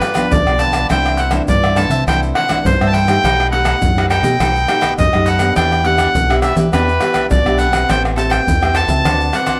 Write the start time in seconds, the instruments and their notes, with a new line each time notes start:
Already playing: nylon-string guitar G2, accordion B4
0.00 cavaquinho F4 G4 B4 D5, pandeiro, tamborim, shaker
0.14 nylon-string guitar F3 B3 D4, cavaquinho F4 G4 B4 D5, pandeiro, tamborim, shaker, surdo
0.31 fingered electric bass D2, nylon-string guitar D3, accordion D5, pandeiro, shaker, surdo
0.46 fingered electric bass B1, cavaquinho G4 B4 D5, pandeiro, tamborim, shaker
0.58 nylon-string guitar F3 B3 D4, cavaquinho F4 G4 B4 D5, accordion A5, pandeiro, shaker
0.73 pandeiro, tamborim, shaker, surdo
0.89 fingered electric bass C2, nylon-string guitar C3 E3 A3 D4, cavaquinho E4 A4 C5 E5, accordion G5, pandeiro, tamborim, shaker, surdo
1.06 pandeiro, tamborim, shaker
1.17 cavaquinho E4 A4 C5 E5, accordion F#5, pandeiro, shaker
1.31 nylon-string guitar E3 A3 D4, cavaquinho E4 A4 C5 E5, pandeiro, tamborim, shaker, surdo
1.48 fingered electric bass G2, nylon-string guitar G2, accordion D5, pandeiro, shaker, surdo
1.63 cavaquinho A4 C5 E5, pandeiro, tamborim, shaker
1.76 nylon-string guitar E3 A3 D4, cavaquinho E4 A4 C5 E5, accordion A5, pandeiro, tamborim, shaker
1.89 fingered electric bass C3, cavaquinho A4 C5 E5, pandeiro, shaker, surdo
2.07 fingered electric bass C2, nylon-string guitar C3 E3 A3 D4, cavaquinho E4 A4 C5 E5, accordion G5, pandeiro, tamborim, shaker, surdo
2.23 pandeiro, shaker
2.35 cavaquinho E4 A4 C5 E5, accordion F#5, pandeiro, tamborim
2.49 nylon-string guitar E3 A3 D4, cavaquinho E4 A4 C5 E5, pandeiro, tamborim, shaker, surdo
2.65 fingered electric bass G2, nylon-string guitar G2, accordion C5, pandeiro, shaker, surdo
2.81 fingered electric bass G2, nylon-string guitar E3 A3 D4, cavaquinho A4 C5 E5, pandeiro, tamborim, shaker
2.87 accordion A5
2.92 cavaquinho E4 A4 C5 E5, accordion G5, pandeiro
3.08 nylon-string guitar A3 D#4 G4, pandeiro, tamborim, shaker, surdo
3.24 fingered electric bass B1, nylon-string guitar B2, cavaquinho D#4 A4 B4 D#5, pandeiro, tamborim, shaker, surdo
3.40 pandeiro, tamborim, shaker
3.51 nylon-string guitar A3 D#4 G4, cavaquinho D#4 A4 B4 D#5, accordion F#5, pandeiro
3.65 cavaquinho D#4 A4 B4 D#5, pandeiro, tamborim, shaker, surdo
3.82 fingered electric bass F#2, nylon-string guitar F#2, pandeiro, shaker, surdo
3.96 nylon-string guitar A3 D#4 G4, cavaquinho A4 B4 D#5, pandeiro, tamborim, shaker
4.10 cavaquinho D#4 A4 B4 D#5, accordion G5, pandeiro, tamborim, shaker, surdo
4.23 fingered electric bass B2, nylon-string guitar A3 D#4 G4, cavaquinho A4 B4 D#5, pandeiro, shaker, surdo
4.40 fingered electric bass B1, nylon-string guitar B2 A3 D#4 G4, cavaquinho D#4 A4 B4 D#5, pandeiro, tamborim, shaker, surdo
4.56 pandeiro, shaker
4.68 nylon-string guitar A3 D#4 G4, cavaquinho D#4 A4 B4 D#5, pandeiro, tamborim, shaker
4.81 cavaquinho D#4 A4 B4 D#5, pandeiro, tamborim, shaker, surdo
4.98 nylon-string guitar F#2, fingered electric bass F#2, accordion D#5, pandeiro, shaker, surdo
5.13 fingered electric bass F#2, nylon-string guitar A3 D#4 G4, cavaquinho A4 B4 D#5, pandeiro, tamborim, shaker
5.26 cavaquinho D#4 A4 B4 D#5, accordion F#5, pandeiro, shaker
5.39 nylon-string guitar B3 D4 G4, pandeiro, tamborim, shaker, surdo
5.56 fingered electric bass E2, nylon-string guitar E3, cavaquinho D4 G4 B4 E5, accordion G5, pandeiro, tamborim, shaker, surdo
5.72 pandeiro, tamborim, shaker
5.84 nylon-string guitar B3 D4 G4, cavaquinho D4 G4 B4 E5, accordion F#5, pandeiro
5.98 cavaquinho D4 G4 B4 E5, pandeiro, tamborim, shaker, surdo
6.14 fingered electric bass B1, nylon-string guitar B2, pandeiro, shaker, surdo
6.28 nylon-string guitar B3 D4 G4, cavaquinho G4 B4 E5, pandeiro, tamborim, shaker
6.42 cavaquinho D4 G4 B4 E5, accordion E5, pandeiro, tamborim, shaker, surdo
6.55 fingered electric bass E3, nylon-string guitar B3 D4 G4, cavaquinho G4 B4 E5, pandeiro, shaker, surdo
6.72 fingered electric bass E2, nylon-string guitar E3 B3 D4, cavaquinho D4 G4 B4 E5, accordion B4, pandeiro, tamborim, shaker, surdo
6.89 pandeiro, shaker
7.00 nylon-string guitar B3 D4 G4, cavaquinho D4 G4 B4 E5, pandeiro, tamborim, shaker
7.14 cavaquinho D4 G4 B4 E5, pandeiro, tamborim, shaker, surdo
7.30 fingered electric bass B1, nylon-string guitar B2, accordion D5, pandeiro, shaker, surdo
7.46 fingered electric bass B1, nylon-string guitar B3 D4 G4, cavaquinho G4 B4 E5, pandeiro, tamborim, shaker
7.58 cavaquinho D4 G4 B4 E5, accordion F#5, pandeiro, shaker
7.72 nylon-string guitar C4 G4 B4, pandeiro, tamborim, shaker, surdo
7.89 fingered electric bass A1, nylon-string guitar A3, cavaquinho A4 C5 E5 G5, accordion G5, pandeiro, tamborim, shaker, surdo
8.05 pandeiro, tamborim, shaker
8.16 nylon-string guitar C4 G4 B4, cavaquinho A4 C5 E5 G5, accordion A5, pandeiro, shaker
8.30 cavaquinho A4 C5 E5 G5, accordion G5, pandeiro, tamborim, shaker, surdo
8.47 fingered electric bass E2, nylon-string guitar E3, pandeiro, shaker, surdo
8.61 nylon-string guitar C4 G4 B4, cavaquinho C5 E5 G5, pandeiro, tamborim, shaker
8.74 cavaquinho A4 C5 E5 G5, accordion A5, pandeiro, tamborim, shaker, surdo
8.88 fingered electric bass C#2, nylon-string guitar C4 F#4 B4, cavaquinho C5 E5 G5, pandeiro, shaker, surdo
9.04 fingered electric bass D2, nylon-string guitar D3, cavaquinho D4 C5 D5 F#5, pandeiro, tamborim, shaker, surdo
9.21 pandeiro, shaker
9.33 nylon-string guitar C4 F#4 B4, cavaquinho D4 C5 D5 F#5, accordion F#5, pandeiro, tamborim, shaker
9.46 cavaquinho D4 C5 D5 F#5, pandeiro, tamborim, shaker, surdo